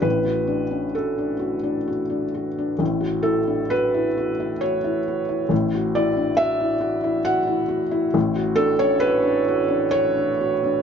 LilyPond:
\new Staff \with { instrumentName = "Felt piano" } { \time 3/4 \key fis \minor \tempo 4 = 67 << { b'4 a'4 r4 | r8 a'8 b'4 cis''4 | r8 d''8 e''4 fis''4 | r8 a'16 cis''16 b'4 cis''4 | } \\ { <a,, a, d'>16 fis'16 d'16 cis'16 fis'16 d'16 fis'16 d'16 fis'16 d'16 fis'16 d'16 | <a,, a,>16 fis'16 e'16 d'16 fis'16 e'16 fis'16 e'16 fis'16 e'16 fis'16 e'16 | <a,, a,>16 fis'16 e'16 d'16 fis'16 e'16 fis'16 e'16 fis'16 e'16 fis'16 e'16 | <a,, a,>16 fis'16 d'16 cis'16 fis'16 d'16 fis'16 d'16 fis'16 d'16 fis'16 d'16 | } >> }